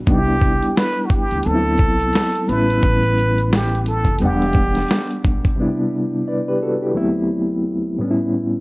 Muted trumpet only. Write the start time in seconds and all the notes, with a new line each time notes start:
0.08 G4
0.78 B4
1.06 F#4
1.12 G4
1.46 A4
2.49 B4
3.54 G4
3.88 A4
4.24 G4